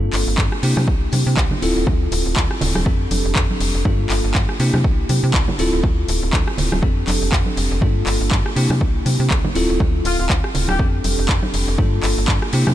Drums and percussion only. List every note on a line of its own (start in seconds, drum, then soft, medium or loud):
0.13 clap medium
0.13 open hi-hat loud
0.13 tambourine medium
0.29 tambourine medium
0.38 kick loud
0.38 clap loud
0.38 tambourine soft
0.38 high conga medium
0.52 cross-stick medium
0.63 open hi-hat loud
0.63 tambourine medium
0.77 cross-stick medium
0.77 tambourine medium
0.77 high conga medium
0.88 kick loud
1.12 open hi-hat loud
1.12 tambourine loud
1.12 high conga medium
1.27 tambourine medium
1.37 kick loud
1.37 clap loud
1.51 high conga medium
1.51 low conga medium
1.62 open hi-hat medium
1.62 tambourine medium
1.76 tambourine medium
1.87 kick loud
1.87 tambourine soft
1.87 high conga loud
2.12 open hi-hat loud
2.12 tambourine loud
2.26 tambourine medium
2.36 kick loud
2.36 clap loud
2.36 tambourine soft
2.36 high conga medium
2.51 cross-stick medium
2.61 open hi-hat loud
2.61 tambourine medium
2.61 low conga medium
2.75 cross-stick medium
2.75 tambourine soft
2.75 high conga medium
2.86 kick loud
3.11 open hi-hat loud
3.11 tambourine medium
3.11 high conga medium
3.25 tambourine soft
3.36 kick loud
3.36 clap loud
3.51 high conga loud
3.60 open hi-hat loud
3.60 tambourine medium
3.75 tambourine medium
3.85 kick loud
3.85 tambourine soft
3.85 high conga loud
4.10 clap medium
4.10 open hi-hat loud
4.10 tambourine medium
4.24 tambourine soft
4.34 kick loud
4.34 clap loud
4.34 tambourine soft
4.34 high conga medium
4.49 cross-stick medium
4.59 open hi-hat loud
4.59 tambourine medium
4.74 cross-stick medium
4.74 tambourine medium
4.74 high conga medium
4.84 kick loud
5.09 open hi-hat loud
5.09 tambourine loud
5.09 high conga medium
5.24 tambourine soft
5.34 kick loud
5.34 clap loud
5.48 high conga loud
5.48 low conga medium
5.59 open hi-hat medium
5.59 tambourine medium
5.73 tambourine medium
5.84 kick loud
5.84 tambourine soft
5.84 high conga medium
6.08 open hi-hat loud
6.08 tambourine medium
6.22 tambourine soft
6.33 kick loud
6.33 clap loud
6.33 tambourine soft
6.33 high conga medium
6.48 cross-stick medium
6.57 open hi-hat medium
6.57 tambourine medium
6.57 low conga medium
6.72 cross-stick medium
6.72 tambourine soft
6.72 high conga medium
6.83 kick loud
6.83 tambourine soft
7.08 clap medium
7.08 open hi-hat loud
7.08 tambourine medium
7.08 high conga medium
7.22 tambourine soft
7.32 kick loud
7.32 clap loud
7.46 high conga medium
7.57 open hi-hat medium
7.57 tambourine medium
7.72 tambourine soft
7.81 kick loud
7.81 tambourine soft
7.81 high conga medium
8.07 clap medium
8.07 open hi-hat loud
8.07 tambourine medium
8.22 tambourine medium
8.31 kick loud
8.31 clap loud
8.31 tambourine soft
8.31 high conga medium
8.46 cross-stick medium
8.56 open hi-hat loud
8.56 tambourine medium
8.70 cross-stick medium
8.70 tambourine soft
8.70 high conga medium
8.81 kick loud
9.06 open hi-hat loud
9.06 tambourine medium
9.06 high conga medium
9.20 tambourine soft
9.30 kick loud
9.30 clap loud
9.44 high conga medium
9.44 low conga medium
9.55 open hi-hat medium
9.55 tambourine medium
9.69 tambourine medium
9.80 kick loud
9.80 tambourine soft
9.80 high conga loud
10.05 open hi-hat loud
10.05 tambourine medium
10.19 tambourine soft
10.29 kick loud
10.29 clap loud
10.29 tambourine soft
10.29 high conga medium
10.44 cross-stick medium
10.54 open hi-hat medium
10.54 tambourine medium
10.54 low conga medium
10.68 cross-stick medium
10.68 tambourine medium
10.68 high conga medium
10.79 kick loud
10.79 tambourine soft
11.04 open hi-hat loud
11.04 tambourine medium
11.04 high conga medium
11.18 tambourine soft
11.29 kick loud
11.29 clap loud
11.42 high conga loud
11.54 open hi-hat medium
11.54 tambourine loud
11.68 tambourine medium
11.78 kick loud
11.78 tambourine soft
11.78 high conga medium
12.03 clap medium
12.03 open hi-hat loud
12.03 tambourine medium
12.18 tambourine soft
12.28 kick loud
12.28 clap loud
12.28 tambourine soft
12.28 high conga medium
12.42 cross-stick medium
12.53 open hi-hat medium
12.53 tambourine medium
12.66 cross-stick medium
12.66 tambourine medium
12.66 high conga medium